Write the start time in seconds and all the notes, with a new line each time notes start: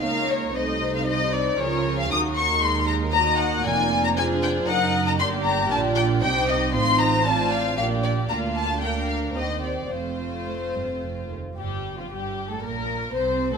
Already playing: D#4
0.02 C#2 C#3 A#3 A#4 C#5 F5
0.29 C#5
0.54 C2 C3 A3 D#4 C5 D#5
0.96 F5
1.07 G3 D#5
1.33 D5
1.59 C#2 C#3 F3 F4 G#4 A#4 C#5
1.99 F5
2.10 D#2 F#3 D#4 F#4 A#4 D#6
2.37 C#6
2.62 G#3 D#4 C6
2.87 A#5
3.13 A#3 D#4 F#4 D#5 A#5
3.39 F#5
3.65 F1 F2 F4 D5 G#5
4.04 A#5
4.16 D4 F4 G#4 C5 G#5
4.42 G5
4.67 F#1 F#2 D#4 A#4 D#5 F#5
5.07 A#5
5.18 G1 G2 A#3 G4 D5 C6
5.45 A#5
5.69 A#1 A#2 D4 F4 D5 A5
5.96 G5
6.21 C2 C3 D#4 G4 C5 G5
6.49 D#5
6.74 A1 A2 C4 D#4 F4 C5 C6
7.00 A#5
7.26 C4 F4 D5 A5
7.51 F5
7.77 A#1 A#2 A#3 D4 G4 D5 F5
8.04 D5
8.30 D2 A#3 D4 F4 F5 A#5
8.56 A5
8.82 A#3 D4 A#4 F5 G5
9.09 F5
9.36 D#2 C4 G4 C5 D#5
9.64 D5
9.91 F1 F2 A3 C4 F4 C5
10.47 A2
10.75 G2
11.02 F2
11.30 D#2
11.57 G1 G2 G3 G4
11.97 F2 F3 F4
12.10 G1 G2 G3 G4
12.50 A2 A3 A4
12.62 A#1 A#2 A#3 A#4
13.14 C2 C3 C4 C5
13.53 A2 A3 A4